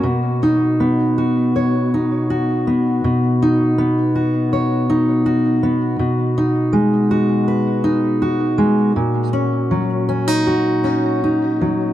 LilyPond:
\new Staff \with { instrumentName = "Steel-string acoustic guitar" } { \time 4/4 \key b \major \tempo 4 = 81 << { fis'8 dis'4 fis'8 cis''8 dis'8 fis'4 | r8 dis'4 fis'8 cis''8 dis'8 fis'4 | r8 dis'4 fis'8 b'8 dis'8 fis'4 | r8 cis'4 cis'16 dis'16 fis'8 cis'8 dis'4 | } \\ { b,4 b2~ b8 b8 | b,4 b2~ b8 b8 | b,4 gis2~ gis8 gis8 | ais,4 fis2~ fis8 fis8 | } >> }